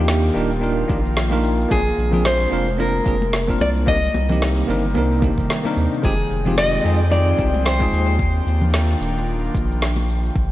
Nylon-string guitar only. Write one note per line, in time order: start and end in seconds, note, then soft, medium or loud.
0.00 1.13 G4 medium
1.71 2.26 G#4 medium
2.26 2.79 C5 medium
2.80 3.61 A#4 medium
3.61 3.68 D5 loud
3.88 5.46 D#5 loud
6.04 6.60 G#4 medium
6.58 6.99 D#5 loud
6.99 7.11 D5 loud
7.11 7.65 D5 loud
7.65 8.16 C5 medium